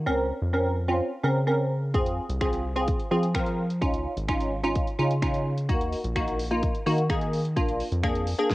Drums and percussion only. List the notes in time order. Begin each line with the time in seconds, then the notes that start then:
1.94 kick, closed hi-hat
2.06 closed hi-hat
2.29 closed hi-hat
2.41 finger snap, kick, closed hi-hat
2.53 closed hi-hat
2.76 closed hi-hat
2.88 kick, closed hi-hat
3.00 closed hi-hat
3.23 closed hi-hat
3.35 finger snap, kick, closed hi-hat
3.46 closed hi-hat
3.70 closed hi-hat
3.82 kick, closed hi-hat
3.94 closed hi-hat
4.17 closed hi-hat
4.28 finger snap, kick, closed hi-hat
4.40 closed hi-hat
4.64 closed hi-hat
4.75 kick, closed hi-hat
4.87 closed hi-hat
5.11 closed hi-hat
5.22 finger snap, kick, closed hi-hat
5.34 closed hi-hat
5.58 closed hi-hat
5.69 kick, closed hi-hat
5.81 closed hi-hat
5.93 open hi-hat
6.04 closed hi-hat
6.16 finger snap, kick, closed hi-hat
6.28 closed hi-hat
6.39 open hi-hat
6.51 closed hi-hat
6.63 kick, closed hi-hat
6.75 closed hi-hat
6.86 open hi-hat
6.98 closed hi-hat
7.09 finger snap, kick, closed hi-hat
7.21 closed hi-hat
7.33 open hi-hat
7.45 closed hi-hat
7.57 kick, closed hi-hat
7.69 closed hi-hat
7.80 open hi-hat
7.92 closed hi-hat
8.03 finger snap, kick, closed hi-hat
8.15 closed hi-hat
8.27 open hi-hat
8.39 closed hi-hat
8.50 kick, snare